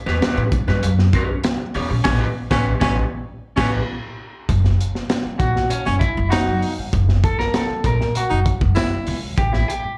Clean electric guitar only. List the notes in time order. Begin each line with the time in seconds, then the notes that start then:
0.06 C#4 G4 B4
0.22 C#4 G4 B4
0.53 muted clean electric guitar stroke
0.68 C#4 G4 B4
0.99 muted clean electric guitar stroke
1.14 C#4 G4 B4
1.29 muted clean electric guitar stroke
1.45 muted clean electric guitar stroke
1.60 muted clean electric guitar stroke
1.75 C#4 G4 C#5
1.90 muted clean electric guitar stroke
2.05 C#4 G4 B4
2.51 C#4 G4 B4
2.80 C#4 G4 B4
3.56 C#4 G4 B4
5.39 F#4
5.70 C#4
5.99 E4
6.30 F#4
7.24 A4
7.39 A#4
7.55 A4
7.86 A#4
8.17 F#4
9.38 G4
9.53 E4
9.68 G4